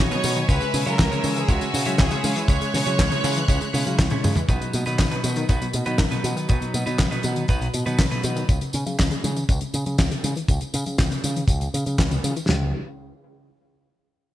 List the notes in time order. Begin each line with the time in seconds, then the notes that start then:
Already playing: B3 D#5 G#5 D#6
0.00 C#5
0.11 B2 F#3 B3 D#4 B4, closed hi-hat, tambourine
0.24 B2 F#3, open hi-hat, tambourine
0.36 D#3, closed hi-hat, tambourine
0.49 C#2 C#3 G#3 C#4 E4 B4 C#5 E5 E6, kick, closed hi-hat, tambourine
0.61 C#3, closed hi-hat, tambourine
0.74 B2 C#3, open hi-hat, tambourine
0.86 C#3 F#3 G#3 C#4 E4 A#4 C#5, closed hi-hat, tambourine
0.99 C#2 E3, kick, snare, clap, closed hi-hat, tambourine
1.11 C#3 G#3 C#4 E4 C#5, closed hi-hat, tambourine
1.23 C#3 G#3, open hi-hat, tambourine
1.36 E3 G#4, closed hi-hat, tambourine
1.48 C#2 C#3 G#3 C#4 E4 F#4 C#5, kick, closed hi-hat, tambourine
1.61 C#3, closed hi-hat, tambourine
1.74 B2 C#3, open hi-hat, tambourine
1.86 C#3 F#3 G#3 C#4 E4 C#5, closed hi-hat, tambourine
1.98 C#2 E3 G#4, kick, snare, clap, closed hi-hat, tambourine
2.11 C#3 G#3 C#4 E4 C#5, closed hi-hat, tambourine
2.24 C#3 G#3, open hi-hat, tambourine
2.36 E3 B4, closed hi-hat, tambourine
2.48 C#2 C#3 G#3 C#4 E4 C#5 F#6, kick, closed hi-hat, tambourine
2.61 C#3, closed hi-hat, tambourine
2.74 B2 C#3, snare, open hi-hat, tambourine
2.86 C#3 F#3 G#3 C#4 E4 C#5, closed hi-hat, tambourine
2.99 C#2 E3, kick, snare, clap, closed hi-hat, tambourine
3.11 C#3 G#3 C#4 E4 C#5, closed hi-hat, tambourine
3.24 C#3 G#3, clap, open hi-hat, tambourine
3.36 E3, closed hi-hat, tambourine
3.48 C#2 C#3 G#3 C#4 E4 C#5, kick, closed hi-hat, tambourine
3.61 C#3, closed hi-hat, tambourine
3.73 B2 C#3 G#3 C#4 E4 C#5, open hi-hat, tambourine
3.86 C#3 F#3, closed hi-hat, tambourine
3.99 C#2 E3, kick, snare, clap, closed hi-hat, tambourine
4.10 C#3 G#3 C#4 E4 C#5, closed hi-hat, high tom, tambourine
4.24 C#3 G#3, open hi-hat, mid tom, tambourine
4.36 E3, closed hi-hat, mid tom, tambourine
4.48 B1 B2 F#3 B3 D#4 B4, kick, closed hi-hat, tambourine
4.61 B2, closed hi-hat, tambourine
4.73 A#2 B2, closed hi-hat, tambourine
4.86 B2 D#3 F#3 B3 D#4 B4, closed hi-hat, tambourine
4.99 B1 D#3, kick, snare, clap, closed hi-hat, tambourine
5.11 B2 F#3 B3 D#4 B4, closed hi-hat, tambourine
5.24 B2 F#3, closed hi-hat, tambourine
5.36 D#3, closed hi-hat, tambourine
5.48 B1 B2 F#3 B3 D#4 B4, kick, closed hi-hat, tambourine
5.61 B2, closed hi-hat, tambourine
5.73 A#2 B2, closed hi-hat, tambourine
5.86 B2 D#3 F#3 B3 D#4 B4, closed hi-hat, tambourine
5.98 B1 D#3, kick, snare, clap, closed hi-hat, tambourine
6.11 B2 F#3 B3 D#4 B4, closed hi-hat, tambourine
6.24 B2 F#3, closed hi-hat, tambourine
6.36 D#3, closed hi-hat, tambourine
6.48 B1 B2 F#3 B3 D#4 B4, kick, closed hi-hat, tambourine
6.61 B2, closed hi-hat, tambourine
6.74 A#2 B2, closed hi-hat, tambourine
6.86 B2 D#3 F#3 B3 D#4 B4, closed hi-hat, tambourine
6.98 B1 D#3, kick, snare, clap, closed hi-hat, tambourine
7.11 B2 F#3 B3 D#4 B4, closed hi-hat, tambourine
7.23 B2 F#3, closed hi-hat, tambourine
7.36 D#3, closed hi-hat, tambourine
7.48 B1 B2 F#3 B3 D#4 B4, kick, closed hi-hat, tambourine
7.61 B2, closed hi-hat, tambourine
7.74 A#2 B2, closed hi-hat, tambourine
7.86 B2 D#3 F#3 B3 D#4 B4, closed hi-hat, tambourine
7.99 B1 D#3, kick, snare, clap, closed hi-hat, tambourine
8.11 B2 F#3 B3 D#4 B4, closed hi-hat, tambourine
8.23 B2 F#3, closed hi-hat, tambourine
8.36 D#3, closed hi-hat, tambourine
8.49 C#2 C#3, kick, closed hi-hat, tambourine
8.61 C#3, closed hi-hat, tambourine
8.73 B2 C#3, closed hi-hat, tambourine
8.86 C#3 F#3, closed hi-hat, tambourine
8.99 C#2 E3, kick, snare, clap, closed hi-hat, tambourine
9.11 C#3, closed hi-hat, tambourine
9.24 C#3 G#3, closed hi-hat, tambourine
9.36 E3, closed hi-hat, tambourine
9.49 C#2 C#3, kick, closed hi-hat, tambourine
9.61 C#3, closed hi-hat, tambourine
9.74 B2 C#3, closed hi-hat, tambourine
9.86 C#3 F#3, closed hi-hat, tambourine
9.98 C#2 E3, kick, snare, clap, closed hi-hat, tambourine
10.11 C#3, closed hi-hat, tambourine
10.24 C#3 G#3, closed hi-hat, tambourine
10.36 E3, closed hi-hat, tambourine
10.48 C#2 C#3, kick, closed hi-hat, tambourine
10.61 C#3, closed hi-hat, tambourine
10.74 B2 C#3, closed hi-hat, tambourine
10.86 C#3 F#3, closed hi-hat, tambourine
10.98 C#2 E3, kick, snare, clap, closed hi-hat, tambourine
11.11 C#3, closed hi-hat, tambourine
11.24 C#3 G#3, closed hi-hat, tambourine
11.36 E3, closed hi-hat, tambourine
11.48 C#2 C#3, kick, closed hi-hat, tambourine
11.61 C#3, closed hi-hat, tambourine
11.74 B2 C#3, closed hi-hat, tambourine
11.86 C#3 F#3, closed hi-hat, tambourine
11.99 C#2 E3, kick, snare, clap, closed hi-hat, tambourine
12.11 C#3, closed hi-hat, tambourine
12.24 C#3 G#3, closed hi-hat, tambourine
12.36 E3, closed hi-hat, tambourine
12.49 C#2 C#3, snare, floor tom